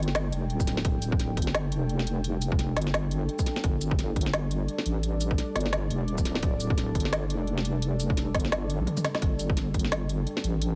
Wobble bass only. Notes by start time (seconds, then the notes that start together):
Already playing: G1
0.33 F1
0.50 D1
1.37 G1
1.72 F1
2.77 G1
3.64 G1
4.16 G1
4.86 A1
5.56 G1
5.91 F1
6.08 D1
6.95 G1
7.30 F1
8.35 G1
8.80 A#1
9.22 G1
9.74 G1
10.44 A1